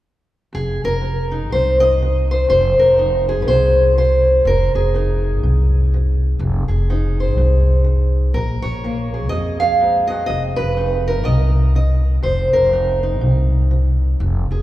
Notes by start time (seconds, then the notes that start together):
0.53 F1 F2 G#4
0.84 F1 A#4
1.02 F3
1.31 D#4
1.51 C2 C3 C5
1.80 D#5
2.02 F3
2.31 C5
2.49 F1 F2 C5
2.79 F1 A#4
2.98 F3 D#4
3.29 G#4
3.42 B4
3.47 C2 C3 C5
3.98 F3 C5
4.45 F1 F2 A#4
4.75 F1 G#4
4.94 F3 D#4
5.43 C2 C3
5.94 F3
6.39 F1 F2
6.68 F1 G#4
6.90 F3 D#4
7.20 C5
7.36 C2 C3
7.84 F3
8.34 A#1 A#2 A#4
8.62 A#1 C#5
8.84 F3 A#3
9.14 G#4
9.29 F2 F3 D#5
9.60 F5
9.81 G#2
10.07 G2 D#5
10.26 F1 F2 D#5
10.56 F1 B4
10.77 F3 D#4
11.08 A#4
11.23 C2 C3 D5 D#5
11.75 F3 D#5
12.23 F1 F2 C5
12.53 F1 A#4
12.72 F3 D#4
13.03 D#4
13.21 C2 C3
13.71 F3
14.20 F1 F2
14.51 F1 G#4